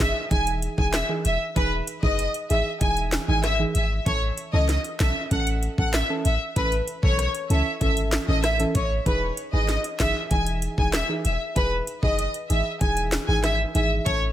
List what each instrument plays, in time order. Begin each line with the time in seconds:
0.00 808-style bass F#1, synth stab E3 D#4 G#4, violin section E5, kick, snare, clap, closed hi-hat
0.31 808-style bass E1, synth stab E3 D#4 G#4, violin section G#5, kick, closed hi-hat
0.47 closed hi-hat
0.62 closed hi-hat
0.78 808-style bass E1, synth stab E3 D#4 G#4, violin section G#5, kick
0.93 violin section E5, cross-stick, snare, clap, closed hi-hat
1.09 synth stab E3 D#4 G#4
1.25 808-style bass E1, violin section E5, closed hi-hat
1.56 808-style bass E1, synth stab E3 D#4 G#4, violin section B4, kick, closed hi-hat
1.87 closed hi-hat
2.03 808-style bass F#1, synth stab E3 D#4 G#4, violin section D#5, kick
2.19 closed hi-hat
2.34 closed hi-hat
2.50 808-style bass G#1, synth stab E3 D#4 G#4, violin section E5, closed hi-hat
2.81 808-style bass E1, synth stab E3 D#4 G#4, violin section G#5, kick, closed hi-hat
2.97 closed hi-hat
3.12 snare, clap, closed hi-hat
3.28 808-style bass G#1, synth stab E3 D#4 G#4, violin section G#5
3.44 violin section E5, cross-stick, snare, closed hi-hat
3.59 synth stab E3 D#4 G#4
3.75 808-style bass G#1, violin section E5, closed hi-hat
4.06 808-style bass A1, synth stab E3 C#4 A4, violin section C#5, kick, closed hi-hat
4.38 closed hi-hat
4.53 808-style bass C#2, synth stab E3 C#4 A4, violin section D#5
4.69 snare, closed hi-hat
4.84 closed hi-hat
5.00 808-style bass B1, synth stab E3 C#4 A4, violin section E5, kick, snare, clap, closed hi-hat
5.31 808-style bass A1, synth stab E3 C#4 A4, violin section F#5, kick, closed hi-hat
5.47 closed hi-hat
5.63 closed hi-hat
5.78 808-style bass A1, synth stab E3 C#4 A4, violin section F#5, kick
5.94 violin section E5, cross-stick, snare, clap, closed hi-hat
6.09 synth stab E3 C#4 A4
6.25 808-style bass A1, violin section E5, closed hi-hat
6.56 808-style bass A1, synth stab E3 C#4 A4, violin section B4, kick, closed hi-hat
6.72 closed hi-hat
6.88 closed hi-hat
7.03 808-style bass B1, synth stab E3 C#4 A4, violin section C#5, kick
7.19 cross-stick, closed hi-hat
7.35 closed hi-hat
7.50 808-style bass C#2, synth stab E3 C#4 A4, violin section E5, closed hi-hat
7.81 808-style bass G#1, synth stab E3 C#4 A4, violin section E5, kick, closed hi-hat
7.97 closed hi-hat
8.12 snare, clap, closed hi-hat
8.28 808-style bass A1, synth stab E3 C#4 A4, violin section D#5
8.44 violin section E5, cross-stick, snare, closed hi-hat
8.59 synth stab E3 C#4 A4, closed hi-hat
8.75 808-style bass A1, violin section C#5, kick, closed hi-hat
9.06 808-style bass E1, synth stab E3 D#4 G#4, violin section B4, kick, closed hi-hat
9.37 closed hi-hat
9.53 808-style bass G#1, synth stab E3 D#4 G#4, violin section D#5
9.69 snare, closed hi-hat
9.84 closed hi-hat
10.00 808-style bass F#1, synth stab E3 D#4 G#4, violin section E5, kick, snare, clap, closed hi-hat
10.31 808-style bass E1, synth stab E3 D#4 G#4, violin section G#5, kick, closed hi-hat
10.46 closed hi-hat
10.62 closed hi-hat
10.78 808-style bass E1, synth stab E3 D#4 G#4, violin section G#5, kick
10.93 violin section E5, cross-stick, snare, clap, closed hi-hat
11.09 synth stab E3 D#4 G#4
11.25 808-style bass E1, violin section E5, closed hi-hat
11.56 808-style bass E1, synth stab E3 D#4 G#4, violin section B4, kick, closed hi-hat
11.87 closed hi-hat
12.03 808-style bass F#1, synth stab E3 D#4 G#4, violin section D#5, kick
12.19 closed hi-hat
12.34 closed hi-hat
12.50 808-style bass G#1, synth stab E3 D#4 G#4, violin section E5, closed hi-hat
12.81 808-style bass E1, synth stab E3 D#4 G#4, violin section G#5, kick, closed hi-hat
12.97 closed hi-hat
13.12 snare, clap, closed hi-hat
13.28 808-style bass G#1, synth stab E3 D#4 G#4, violin section G#5
13.44 violin section E5, cross-stick, snare, closed hi-hat
13.75 808-style bass G#1, synth stab E3 D#4 G#4, violin section E5, closed hi-hat
14.06 808-style bass A1, synth stab E3 C#4 A4, violin section C#5, kick, closed hi-hat